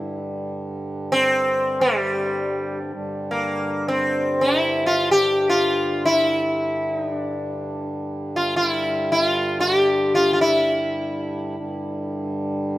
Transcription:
Already playing: G2 D3 E4
1.12 C4
1.81 G3
2.93 G2 D3
3.31 A#3
3.88 C4
4.41 E4
4.86 F4
5.11 G4
5.49 F4
6.05 E4
6.96 D#4
7.19 D4
8.36 F4
8.56 F4
8.68 E4
9.12 E4
9.24 F4
9.60 G4
10.15 F4
10.33 F4
10.41 E4
11.58 G2 D3

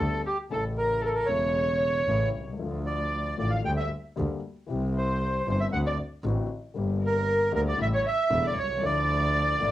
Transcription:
Already playing: A4
0.00 D2 D3 G3 B3 G4
0.26 G4
0.50 A1 A2 C#3 E3 A3 E4 A4
0.78 A#4
1.06 A4 A#4
1.12 A4 A#4
1.18 A#4
1.26 E1 E2 C#3 E3 A3 C#5
1.31 E4 C#5
2.07 A1 A2 C#3 E3 A3 E4
2.35 C2
2.41 B1
2.48 C2
2.53 C#2
2.58 D2 D3 F3 A3 F4
2.86 D5
3.38 A1 A2 D3 F3 A3 F4 D5
3.50 F5
3.55 F5
3.64 D2 D3 G3 A#3 G4 G5
3.77 E5
4.16 D2 D3 G3 A#3 G4
4.67 C2 C3 E3 G3 C4
4.71 G4
4.98 C5
5.47 G1 G2 E3 G3 C4 G4 C5
5.60 E5
5.72 D2 D3 A3 C4 F#4 F#5
5.87 D5
6.24 A1 A2 D3 A3 C4 F#4
6.74 G1 G2 D3 G3 A#3
6.79 G4
7.04 A#4
7.52 D2 D3 G3 A#3 G4 A#4
7.68 D5
7.77 A1 A2 C#3 G3 A3 E4
7.81 E5
7.94 C#5
8.07 E5
8.30 E1 E2 C#3 G3 A3 E4
8.46 D5
8.57 C2 C#5
8.64 B1
8.70 C2
8.77 C#2 D3
8.83 D2 D3 F3 A3 E4 D5
9.59 A1 A2 D3 F3 A3 E4

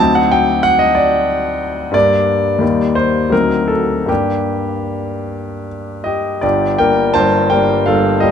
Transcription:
Already playing: D2 F#3 C4 A5
0.00 D#4
0.15 F#5
0.32 G5
0.63 F#5
0.79 D#5
0.95 D5
1.91 G2 G3 A#3 D4 D5
2.58 D#2 G3 A#3 D#4
2.95 C5
3.30 D2 F#3 C4 D#4 A#4
3.68 A4
4.06 G2 G3 A#3 D4 G4
6.04 G4 D#5
6.41 G1 G2 G4 D5
6.79 G3 A#3 D4 A#4 G5
7.14 G1 G2 C5 A5
7.50 G3 A#3 D4 A#4 G5
7.86 G1 G2 A4 F5
8.20 G3 A#3 D4 G4 D#5

